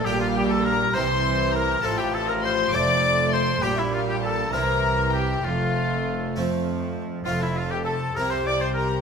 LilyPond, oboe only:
\new Staff \with { instrumentName = "Oboe" } { \time 6/8 \key f \major \tempo 4. = 67 g'16 f'16 g'16 a'16 bes'8 c''4 bes'8 | a'16 g'16 a'16 bes'16 c''8 d''4 c''8 | g'16 e'16 f'16 g'16 a'8 bes'4 g'8 | f'4. r4. |
f'16 e'16 f'16 g'16 a'8 bes'16 c''16 d''16 c''16 bes'8 | }